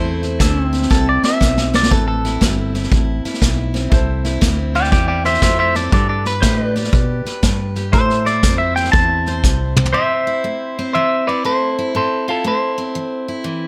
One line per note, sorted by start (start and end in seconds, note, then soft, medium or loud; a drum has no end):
0.00 0.38 E2 medium
0.00 0.36 A2 medium
0.00 0.39 A3 medium
0.00 0.40 C4 medium
0.00 0.23 E4 medium
0.00 1.86 E4 medium
0.00 1.86 A4 medium
0.00 1.23 C5 medium
0.00 1.87 C5 medium
0.23 0.72 E4 medium
0.23 snare soft
0.40 0.89 D2 medium
0.40 0.87 A3 medium
0.40 1.73 C4 medium
0.40 0.65 D4 medium
0.40 5.89 E5 medium
0.40 kick medium
0.40 snare loud
0.40 hi-hat pedal medium
0.65 5.89 C4 medium
0.73 2.24 E4 medium
0.73 snare soft
0.82 snare soft
0.90 1.21 C2 medium
0.90 1.37 E3 medium
0.90 1.07 A4 medium
0.90 kick loud
0.90 snare medium
1.09 1.24 D5 medium
1.22 4.73 C5 medium
1.22 1.73 E5 medium
1.22 muted fretless electric bass stroke soft
1.22 snare medium
1.41 1.90 B1 medium
1.41 1.87 A3 medium
1.41 kick medium
1.41 snare medium
1.41 hi-hat pedal medium
1.57 snare medium
1.74 2.41 C4 medium
1.74 1.91 D5 medium
1.74 snare loud
1.83 snare medium
1.90 2.40 A1 medium
1.90 2.38 A2 medium
1.90 3.87 E4 medium
1.90 3.88 A4 medium
1.90 2.06 A4 medium
1.90 3.88 B4 medium
1.90 kick loud
1.90 snare soft
2.08 3.54 A4 medium
2.25 2.75 E4 medium
2.25 snare soft
2.41 2.90 G1 medium
2.41 2.88 A3 medium
2.41 3.73 C4 soft
2.41 kick medium
2.41 snare loud
2.41 hi-hat pedal medium
2.74 3.24 E4 medium
2.74 snare soft
2.83 snare soft
2.91 3.22 A1 medium
2.91 3.38 E3 medium
2.91 kick loud
2.91 snare soft
3.25 4.24 E4 medium
3.25 muted fretless electric bass stroke soft
3.25 snare soft
3.34 snare soft
3.41 3.90 B1 medium
3.41 3.88 A3 medium
3.41 kick medium
3.41 snare loud
3.41 hi-hat pedal medium
3.74 4.41 C4 medium
3.74 snare soft
3.90 4.40 C2 medium
3.90 4.38 A2 medium
3.90 5.88 E4 medium
3.90 5.88 A4 medium
3.90 5.89 C5 medium
3.90 kick loud
3.90 snare soft
4.24 4.74 E4 medium
4.24 snare soft
4.41 4.91 D2 medium
4.41 4.88 A3 medium
4.41 5.75 C4 medium
4.41 kick medium
4.41 snare loud
4.41 hi-hat pedal medium
4.75 5.93 E4 medium
4.75 4.90 D5 medium
4.75 4.91 G5 loud
4.75 snare soft
4.84 snare soft
4.92 5.41 E2 medium
4.92 5.39 E3 medium
4.92 5.07 D5 medium
4.92 5.07 G5 medium
4.92 kick loud
4.92 snare soft
5.08 5.24 D5 medium
5.08 5.25 G5 medium
5.24 5.41 C5 medium
5.24 5.91 C5 medium
5.24 5.42 E5 medium
5.24 snare soft
5.34 snare soft
5.42 5.91 F2 loud
5.42 5.89 A3 medium
5.42 5.58 C5 medium
5.42 5.59 E5 medium
5.42 kick medium
5.42 snare loud
5.42 hi-hat pedal medium
5.59 5.75 C5 medium
5.59 5.76 E5 medium
5.75 5.93 C4 medium
5.75 5.92 A4 medium
5.75 5.92 D5 medium
5.75 snare soft
5.91 6.41 G2 medium
5.91 6.39 G3 medium
5.91 7.89 D4 medium
5.91 7.89 G4 medium
5.91 6.08 A4 medium
5.91 7.90 B4 medium
5.91 6.08 D5 medium
5.91 kick loud
5.91 snare soft
6.09 6.25 A4 medium
6.09 6.25 D5 medium
6.25 7.25 B4 medium
6.25 6.75 B4 medium
6.25 snare soft
6.42 6.91 A2 loud
6.42 6.90 D4 medium
6.42 6.75 G4 medium
6.42 6.62 C5 medium
6.42 6.69 E5 medium
6.42 kick medium
6.42 snare loud
6.42 hi-hat pedal medium
6.62 7.91 B4 medium
6.69 7.92 D5 medium
6.75 7.75 G4 medium
6.75 snare soft
6.84 snare soft
6.93 7.23 B2 medium
6.93 7.39 D3 medium
6.93 kick loud
6.93 snare soft
7.25 7.92 B4 medium
7.25 muted fretless electric bass stroke soft
7.25 snare soft
7.43 7.92 G2 loud
7.43 7.90 D4 medium
7.43 kick medium
7.43 snare loud
7.43 hi-hat pedal medium
7.75 7.92 G4 medium
7.75 snare soft
7.92 8.42 A2 medium
7.92 8.40 A2 medium
7.92 9.89 E4 medium
7.92 9.90 A4 medium
7.92 9.91 C5 medium
7.92 8.26 C5 loud
7.92 9.90 C5 medium
7.92 9.92 E5 medium
7.92 kick loud
7.92 snare soft
8.10 snare soft
8.26 8.76 E4 medium
8.26 8.58 D5 medium
8.26 snare soft
8.43 8.92 F2 medium
8.43 8.90 A3 medium
8.43 9.76 C4 medium
8.43 kick medium
8.43 snare loud
8.43 hi-hat pedal medium
8.58 8.75 E5 medium
8.76 10.26 E4 medium
8.76 8.91 G5 medium
8.76 snare soft
8.84 snare soft
8.92 9.42 E2 medium
8.92 9.40 E3 medium
8.92 9.90 A5 medium
8.92 kick loud
8.92 snare soft
9.26 9.93 C5 medium
9.26 snare soft
9.44 9.92 C2 medium
9.44 9.91 A3 medium
9.44 kick medium
9.44 snare medium
9.44 hi-hat pedal medium
9.77 10.77 C4 medium
9.77 mid tom loud
9.85 floor tom medium
9.93 10.41 A2 medium
9.93 13.68 C5 medium
9.93 10.90 C5 medium
9.93 10.90 E5 medium
9.93 13.68 E5 medium
10.27 11.27 E4 medium
10.44 10.91 A3 medium
10.79 12.77 C4 medium
10.93 11.41 E3 medium
10.93 11.24 C5 medium
10.93 11.28 E5 loud
11.27 11.44 E4 medium
11.27 11.43 B4 medium
11.27 11.44 D5 medium
11.45 11.91 A3 medium
11.45 11.77 E4 medium
11.45 11.92 A4 medium
11.45 11.95 C5 loud
11.79 12.27 E4 medium
11.95 12.41 A2 medium
11.95 12.26 A4 medium
11.95 12.29 C5 medium
12.28 13.27 E4 medium
12.28 12.44 F4 medium
12.28 12.46 A4 medium
12.44 12.91 A3 medium
12.44 13.68 A4 medium
12.44 13.68 C5 medium
12.78 13.68 C4 medium
12.95 13.42 E3 medium
13.28 13.68 E4 medium
13.44 13.68 E3 medium